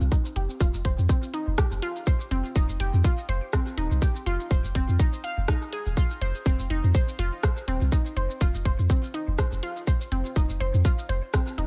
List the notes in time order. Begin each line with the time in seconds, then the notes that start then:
0.01 C2, shaker
0.12 D#4, kick, shaker
0.25 shaker
0.36 F1 G4, closed hi-hat
0.50 shaker
0.60 D#1 F4, kick, shaker
0.74 F1, shaker
0.85 F1 C5, kick, closed hi-hat
0.99 F2, shaker
1.09 C4, kick, shaker
1.23 shaker
1.34 D#4, closed hi-hat
1.47 F1
1.58 G4, kick, cross-stick, shaker
1.72 F1, shaker
1.82 F4, closed hi-hat
1.96 shaker
2.07 C5, kick, shaker
2.21 shaker
2.31 F1 C4, closed hi-hat
2.45 shaker
2.56 D#1 D#4, kick, shaker
2.69 F1, shaker
2.80 F1 G4, closed hi-hat
2.94 F2, shaker
3.04 F4, kick, shaker
3.18 shaker
3.29 F1 C5, closed hi-hat
3.53 C4, kick, cross-stick, shaker
3.67 shaker
3.78 D#1 D#4, closed hi-hat
3.91 C2, shaker
4.02 G4, kick, shaker
4.16 shaker
4.26 F1 F4, closed hi-hat
4.40 shaker
4.51 D#1 C5, kick, shaker
4.64 F1, shaker
4.75 F1 C4, kick, closed hi-hat
4.89 F2, shaker
5.00 D#4, kick, shaker
5.13 shaker
5.24 F5, closed hi-hat
5.38 F1
5.48 D#4, kick, cross-stick, shaker
5.62 shaker
5.73 G#4, closed hi-hat
5.86 D#1, shaker
5.97 F4, kick, shaker
6.11 shaker
6.21 F1 C5, closed hi-hat
6.35 shaker
6.46 D#1 C4, kick, shaker
6.59 F1, shaker
6.70 F1 D#4, closed hi-hat
6.84 F2, shaker
6.95 C5, kick, shaker
7.08 shaker
7.19 F1 F4, closed hi-hat
7.43 C5, kick, cross-stick, shaker
7.57 shaker
7.68 D#1 C4, closed hi-hat
7.81 C2, shaker
7.92 D#4, kick, shaker
8.06 shaker
8.17 F1 C5, closed hi-hat
8.30 shaker
8.41 D#1 F4, kick, shaker
8.55 F1, shaker
8.65 F1 C5, kick, closed hi-hat
8.79 F2, shaker
8.90 C4, kick, shaker
9.04 shaker
9.14 D#4, closed hi-hat
9.28 F1
9.38 C5, kick, cross-stick, shaker
9.52 F1, shaker
9.63 F4, closed hi-hat
9.77 shaker
9.87 C5, kick, shaker
10.01 shaker
10.12 F1 C4, closed hi-hat
10.25 shaker
10.36 D#1 D#4, kick, shaker
10.50 F1, shaker
10.60 F1 C5, closed hi-hat
10.74 F2, shaker
10.85 F4, kick, shaker
10.99 shaker
11.09 F1 C5, closed hi-hat
11.34 C4, kick, cross-stick, shaker
11.47 shaker
11.58 D#1 D#4, closed hi-hat